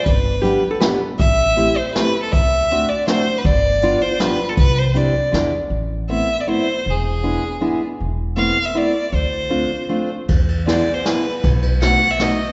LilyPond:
<<
  \new Staff \with { instrumentName = "Violin" } { \time 3/4 \key g \mixolydian \tempo 4 = 158 b'2 r4 | e''4. c''8 b'8. a'16 | e''4. d''8 c''8. b'16 | d''4. c''8 b'8. a'16 |
b'8 c''8 d''4. r8 | \key a \minor r4 e''8. d''16 c''4 | gis'2~ gis'8 r8 | r4 f''8. e''16 d''4 |
c''2~ c''8 r8 | r4 d''8. c''16 b'4 | r4 fis''8. e''16 dis''4 | }
  \new Staff \with { instrumentName = "Hollow-body jazz guitar" } { \time 3/4 \key g \mixolydian r4 g'8. a'16 b'8. r16 | r2. | r2. | r2. |
r2. | \key a \minor r2. | r2. | r2. |
r2. | r2. | r2. | }
  \new Staff \with { instrumentName = "Steel-string acoustic guitar" } { \time 3/4 \key g \mixolydian r4 <g b d' g'>8 r8 <g b d' g'>8 r8 | r4 <a c' e' g'>8 r8 <a c' e' g'>8 r8 | r4 <a c' d' fis'>8 r8 <a c' d' fis'>8 r8 | r4 <g b d' f'>8 r8 <g b d' f'>8 r8 |
r4 <g c' d' e'>8 r8 <gis b d' e'>8 r8 | \key a \minor r4 <a b c' e'>8 r8 <a b c' e'>8 r8 | r4 <gis b d' e'>8 r8 <gis b d' e'>8 r8 | r4 <a b c' e'>8 r8 <a b c' e'>8 r8 |
r4 <a c' d' f'>8 r8 <a c' d' f'>8 r8 | r4 <gis b e' gis'>8 r8 <gis b e' gis'>8 r8 | r4 <a b dis' fis'>8 r8 <a b dis' fis'>8 r8 | }
  \new Staff \with { instrumentName = "Upright bass" } { \clef bass \time 3/4 \key g \mixolydian g,,2 r4 | a,,2 r4 | d,2 r4 | g,,2 r4 |
c,2 e,4 | \key a \minor a,,2 r4 | e,,2 r4 | e,,2 r4 |
d,2 r4 | e,2 r4 | b,,2 r4 | }
  \new DrumStaff \with { instrumentName = "Drums" } \drummode { \time 3/4 <hh bd>4 hh4 <hh sn>4 | <hh bd>4 hh4 <hh sn>4 | <hh bd>4 hh4 <hh sn>4 | <hh bd>4 hh4 <hh sn>4 |
<hh bd>4 hh4 <hh sn>4 | r4 r4 r4 | r4 r4 r4 | r4 r4 r4 |
r4 r4 r4 | <bd cymr>8 cymr8 <cymr sn>4 <cymr sn>4 | <bd cymr>8 cymr8 <cymr sn>4 <cymr sn>4 | }
>>